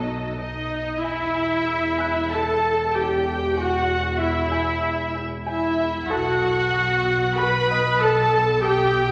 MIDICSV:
0, 0, Header, 1, 8, 480
1, 0, Start_track
1, 0, Key_signature, 1, "minor"
1, 0, Tempo, 641711
1, 781, Time_signature, 4, 2, 24, 8
1, 2220, Tempo, 628931
1, 6914, End_track
2, 0, Start_track
2, 0, Title_t, "Grand piano"
2, 0, Program_c, 0, 0
2, 0, Control_c, 0, 64, 127
2, 795, Control_c, 0, 64, 0
2, 896, Control_c, 0, 64, 127
2, 1498, Note_on_c, 0, 90, 28
2, 2909, Note_off_c, 0, 90, 0
2, 4609, Note_on_c, 0, 69, 29
2, 4616, Note_on_c, 0, 81, 41
2, 4642, Control_c, 0, 64, 0
2, 4746, Control_c, 0, 64, 127
2, 5839, Note_on_c, 0, 87, 33
2, 5840, Note_on_c, 0, 75, 34
2, 6035, Note_off_c, 0, 69, 0
2, 6039, Note_off_c, 0, 81, 0
2, 6914, Note_off_c, 0, 75, 0
2, 6914, Note_off_c, 0, 87, 0
2, 6914, End_track
3, 0, Start_track
3, 0, Title_t, "Violin section"
3, 0, Program_c, 1, 48
3, 0, Note_on_c, 1, 69, 31
3, 285, Note_off_c, 1, 69, 0
3, 305, Note_on_c, 1, 75, 32
3, 753, Note_off_c, 1, 75, 0
3, 795, Note_on_c, 1, 76, 42
3, 1745, Note_on_c, 1, 81, 46
3, 1752, Note_off_c, 1, 76, 0
3, 2220, Note_on_c, 1, 79, 37
3, 2221, Note_off_c, 1, 81, 0
3, 2701, Note_off_c, 1, 79, 0
3, 2706, Note_on_c, 1, 78, 46
3, 3178, Note_on_c, 1, 76, 42
3, 3183, Note_off_c, 1, 78, 0
3, 3888, Note_off_c, 1, 76, 0
3, 4136, Note_on_c, 1, 76, 47
3, 4591, Note_off_c, 1, 76, 0
3, 4601, Note_on_c, 1, 78, 59
3, 5575, Note_on_c, 1, 83, 63
3, 5584, Note_off_c, 1, 78, 0
3, 6064, Note_off_c, 1, 83, 0
3, 6076, Note_on_c, 1, 81, 65
3, 6534, Note_on_c, 1, 79, 71
3, 6538, Note_off_c, 1, 81, 0
3, 6914, Note_off_c, 1, 79, 0
3, 6914, End_track
4, 0, Start_track
4, 0, Title_t, "Violin section"
4, 0, Program_c, 2, 48
4, 0, Note_on_c, 2, 75, 30
4, 280, Note_off_c, 2, 75, 0
4, 289, Note_on_c, 2, 75, 34
4, 745, Note_off_c, 2, 75, 0
4, 765, Note_on_c, 2, 76, 44
4, 1737, Note_off_c, 2, 76, 0
4, 1738, Note_on_c, 2, 81, 45
4, 2210, Note_on_c, 2, 79, 38
4, 2218, Note_off_c, 2, 81, 0
4, 2686, Note_on_c, 2, 78, 43
4, 2696, Note_off_c, 2, 79, 0
4, 3163, Note_off_c, 2, 78, 0
4, 3172, Note_on_c, 2, 76, 37
4, 3885, Note_off_c, 2, 76, 0
4, 4138, Note_on_c, 2, 76, 46
4, 4592, Note_off_c, 2, 76, 0
4, 4622, Note_on_c, 2, 78, 55
4, 5583, Note_on_c, 2, 83, 59
4, 5594, Note_off_c, 2, 78, 0
4, 6068, Note_off_c, 2, 83, 0
4, 6074, Note_on_c, 2, 81, 62
4, 6546, Note_off_c, 2, 81, 0
4, 6552, Note_on_c, 2, 79, 68
4, 6914, Note_off_c, 2, 79, 0
4, 6914, End_track
5, 0, Start_track
5, 0, Title_t, "Viola section"
5, 0, Program_c, 3, 48
5, 0, Note_on_c, 3, 54, 32
5, 305, Note_off_c, 3, 54, 0
5, 305, Note_on_c, 3, 63, 37
5, 753, Note_off_c, 3, 63, 0
5, 783, Note_on_c, 3, 64, 47
5, 1745, Note_on_c, 3, 69, 58
5, 1746, Note_off_c, 3, 64, 0
5, 2218, Note_on_c, 3, 67, 47
5, 2221, Note_off_c, 3, 69, 0
5, 2700, Note_off_c, 3, 67, 0
5, 2704, Note_on_c, 3, 66, 49
5, 3172, Note_off_c, 3, 66, 0
5, 3177, Note_on_c, 3, 64, 47
5, 3902, Note_off_c, 3, 64, 0
5, 4129, Note_on_c, 3, 64, 52
5, 4587, Note_off_c, 3, 64, 0
5, 4612, Note_on_c, 3, 66, 65
5, 5589, Note_off_c, 3, 66, 0
5, 5589, Note_on_c, 3, 71, 71
5, 6071, Note_off_c, 3, 71, 0
5, 6071, Note_on_c, 3, 69, 70
5, 6545, Note_off_c, 3, 69, 0
5, 6550, Note_on_c, 3, 67, 77
5, 6914, Note_off_c, 3, 67, 0
5, 6914, End_track
6, 0, Start_track
6, 0, Title_t, "Cello section"
6, 0, Program_c, 4, 48
6, 0, Note_on_c, 4, 63, 36
6, 544, Note_off_c, 4, 63, 0
6, 783, Note_on_c, 4, 40, 35
6, 4597, Note_off_c, 4, 40, 0
6, 4618, Note_on_c, 4, 47, 46
6, 6914, Note_off_c, 4, 47, 0
6, 6914, End_track
7, 0, Start_track
7, 0, Title_t, "Marimba"
7, 0, Program_c, 5, 12
7, 52, Note_on_c, 5, 47, 22
7, 199, Note_off_c, 5, 47, 0
7, 291, Note_on_c, 5, 47, 33
7, 438, Note_off_c, 5, 47, 0
7, 531, Note_on_c, 5, 47, 23
7, 677, Note_off_c, 5, 47, 0
7, 779, Note_on_c, 5, 40, 41
7, 922, Note_off_c, 5, 40, 0
7, 1009, Note_on_c, 5, 40, 29
7, 1155, Note_off_c, 5, 40, 0
7, 1248, Note_on_c, 5, 40, 29
7, 1397, Note_off_c, 5, 40, 0
7, 1484, Note_on_c, 5, 40, 40
7, 1635, Note_off_c, 5, 40, 0
7, 1731, Note_on_c, 5, 40, 29
7, 1879, Note_off_c, 5, 40, 0
7, 1974, Note_on_c, 5, 40, 31
7, 2119, Note_off_c, 5, 40, 0
7, 2206, Note_on_c, 5, 40, 45
7, 2355, Note_off_c, 5, 40, 0
7, 2450, Note_on_c, 5, 40, 31
7, 2597, Note_off_c, 5, 40, 0
7, 2686, Note_on_c, 5, 40, 43
7, 2834, Note_off_c, 5, 40, 0
7, 2930, Note_on_c, 5, 40, 34
7, 3077, Note_off_c, 5, 40, 0
7, 3171, Note_on_c, 5, 40, 31
7, 3317, Note_off_c, 5, 40, 0
7, 3404, Note_on_c, 5, 40, 48
7, 3554, Note_off_c, 5, 40, 0
7, 3644, Note_on_c, 5, 40, 34
7, 3795, Note_off_c, 5, 40, 0
7, 3886, Note_on_c, 5, 40, 34
7, 4037, Note_off_c, 5, 40, 0
7, 4125, Note_on_c, 5, 40, 52
7, 4276, Note_off_c, 5, 40, 0
7, 4373, Note_on_c, 5, 40, 37
7, 4521, Note_off_c, 5, 40, 0
7, 4613, Note_on_c, 5, 47, 55
7, 4761, Note_off_c, 5, 47, 0
7, 4853, Note_on_c, 5, 47, 41
7, 5001, Note_off_c, 5, 47, 0
7, 5095, Note_on_c, 5, 47, 38
7, 5245, Note_off_c, 5, 47, 0
7, 5341, Note_on_c, 5, 47, 54
7, 5491, Note_off_c, 5, 47, 0
7, 5589, Note_on_c, 5, 47, 42
7, 5736, Note_off_c, 5, 47, 0
7, 5822, Note_on_c, 5, 47, 42
7, 5969, Note_off_c, 5, 47, 0
7, 6061, Note_on_c, 5, 47, 64
7, 6207, Note_off_c, 5, 47, 0
7, 6303, Note_on_c, 5, 47, 44
7, 6447, Note_off_c, 5, 47, 0
7, 6537, Note_on_c, 5, 47, 64
7, 6682, Note_off_c, 5, 47, 0
7, 6777, Note_on_c, 5, 47, 48
7, 6914, Note_off_c, 5, 47, 0
7, 6914, End_track
8, 0, Start_track
8, 0, Title_t, "Double bass section"
8, 0, Program_c, 6, 48
8, 0, Note_on_c, 6, 35, 33
8, 602, Note_off_c, 6, 35, 0
8, 790, Note_on_c, 6, 28, 37
8, 4601, Note_off_c, 6, 28, 0
8, 4620, Note_on_c, 6, 35, 47
8, 6914, Note_off_c, 6, 35, 0
8, 6914, End_track
0, 0, End_of_file